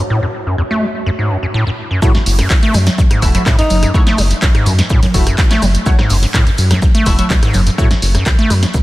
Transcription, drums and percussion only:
2.02 kick loud
2.02 cross-stick medium
2.02 tambourine soft
2.02 shaker medium
2.15 snare medium
2.26 open hi-hat loud
2.26 open hi-hat medium
2.26 tambourine medium
2.39 cross-stick medium
2.39 snare soft
2.39 closed hi-hat medium
2.39 tambourine soft
2.50 kick loud
2.50 snare loud
2.50 clap loud
2.50 tambourine soft
2.50 shaker medium
2.63 closed hi-hat soft
2.74 cross-stick medium
2.74 open hi-hat medium
2.74 tambourine medium
2.74 shaker medium
2.86 snare medium
2.86 closed hi-hat soft
2.86 closed hi-hat medium
2.86 tambourine soft
2.86 low conga medium
2.98 kick loud
2.98 tambourine soft
2.98 shaker medium
3.11 cross-stick medium
3.11 closed hi-hat medium
3.22 kick medium
3.22 open hi-hat loud
3.22 tambourine medium
3.22 shaker medium
3.35 closed hi-hat medium
3.35 tambourine soft
3.35 low conga medium
3.46 kick loud
3.46 cross-stick medium
3.46 snare loud
3.46 clap loud
3.46 tambourine soft
3.46 shaker medium
3.59 snare medium
3.59 closed hi-hat medium
3.70 snare soft
3.70 open hi-hat medium
3.70 tambourine medium
3.70 low conga medium
3.70 shaker medium
3.83 cross-stick medium
3.83 closed hi-hat medium
3.83 tambourine soft
3.94 kick loud
3.94 tambourine soft
3.94 shaker medium
4.07 snare medium
4.07 closed hi-hat soft
4.18 cross-stick medium
4.18 snare soft
4.18 open hi-hat loud
4.18 tambourine medium
4.18 shaker medium
4.31 snare soft
4.31 closed hi-hat medium
4.31 tambourine soft
4.42 kick loud
4.42 snare loud
4.42 clap loud
4.42 tambourine soft
4.42 shaker medium
4.55 cross-stick medium
4.55 closed hi-hat soft
4.66 open hi-hat loud
4.66 tambourine medium
4.66 shaker medium
4.79 snare medium
4.79 closed hi-hat medium
4.79 tambourine soft
4.90 kick loud
4.90 cross-stick medium
4.90 tambourine soft
4.90 shaker loud
5.03 snare medium
5.03 closed hi-hat medium
5.03 low conga medium
5.14 kick medium
5.14 snare soft
5.14 open hi-hat loud
5.14 tambourine medium
5.14 shaker medium
5.27 cross-stick medium
5.27 closed hi-hat medium
5.27 tambourine soft
5.38 kick loud
5.38 snare loud
5.38 clap loud
5.38 tambourine soft
5.38 shaker medium
5.51 snare medium
5.51 snare soft
5.51 clap soft
5.51 closed hi-hat medium
5.62 cross-stick medium
5.62 open hi-hat loud
5.62 tambourine medium
5.62 low conga medium
5.62 shaker medium
5.75 closed hi-hat medium
5.75 tambourine soft
5.86 kick loud
5.86 tambourine soft
5.86 shaker medium
5.99 cross-stick medium
5.99 snare medium
6.10 open hi-hat medium
6.10 open hi-hat loud
6.10 tambourine medium
6.23 snare soft
6.23 closed hi-hat medium
6.23 tambourine soft
6.34 kick loud
6.34 cross-stick medium
6.34 snare loud
6.34 clap loud
6.34 tambourine soft
6.34 shaker medium
6.47 closed hi-hat soft
6.58 open hi-hat loud
6.58 tambourine medium
6.58 shaker medium
6.71 cross-stick medium
6.71 snare medium
6.71 closed hi-hat medium
6.71 closed hi-hat soft
6.71 tambourine soft
6.71 low conga medium
6.82 kick loud
6.82 tambourine soft
6.82 shaker medium
6.95 closed hi-hat medium
7.06 kick medium
7.06 cross-stick medium
7.06 open hi-hat loud
7.06 tambourine medium
7.06 shaker medium
7.19 closed hi-hat medium
7.19 tambourine soft
7.19 low conga medium
7.30 kick loud
7.30 snare loud
7.30 clap loud
7.30 tambourine soft
7.30 shaker medium
7.43 cross-stick medium
7.43 snare medium
7.43 closed hi-hat medium
7.54 snare soft
7.54 open hi-hat loud
7.54 tambourine medium
7.54 low conga medium
7.54 shaker medium
7.67 closed hi-hat medium
7.67 tambourine soft
7.78 kick loud
7.78 cross-stick medium
7.78 tambourine soft
7.78 shaker medium
7.91 snare medium
7.91 closed hi-hat soft
8.02 snare soft
8.02 open hi-hat loud
8.02 tambourine medium
8.02 shaker medium
8.15 cross-stick medium
8.15 snare soft
8.15 closed hi-hat medium
8.15 tambourine soft
8.26 kick loud
8.26 snare loud
8.26 clap loud
8.26 tambourine soft
8.26 shaker medium
8.39 closed hi-hat soft
8.50 cross-stick medium
8.50 open hi-hat loud
8.50 tambourine medium
8.50 shaker medium
8.63 snare medium
8.63 closed hi-hat medium
8.63 tambourine soft
8.74 kick loud
8.74 tambourine soft
8.74 shaker medium

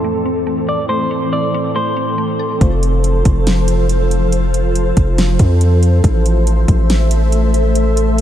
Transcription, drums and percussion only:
2.61 kick loud
2.61 closed hi-hat medium
2.83 closed hi-hat medium
3.04 closed hi-hat medium
3.25 kick medium
3.25 closed hi-hat medium
3.47 snare loud
3.47 closed hi-hat medium
3.68 closed hi-hat medium
3.89 closed hi-hat medium
4.11 closed hi-hat medium
4.32 closed hi-hat medium
4.54 closed hi-hat medium
4.75 closed hi-hat medium
4.97 kick medium
4.97 closed hi-hat medium
5.18 snare loud
5.18 closed hi-hat medium
5.39 kick medium
5.39 closed hi-hat medium
5.61 closed hi-hat medium
5.83 closed hi-hat medium
6.04 kick loud
6.04 closed hi-hat medium
6.26 closed hi-hat medium
6.47 closed hi-hat medium
6.68 kick medium
6.68 closed hi-hat medium
6.90 snare loud
6.90 closed hi-hat medium
7.11 closed hi-hat medium
7.32 closed hi-hat medium
7.54 closed hi-hat medium
7.75 closed hi-hat medium
7.97 closed hi-hat medium

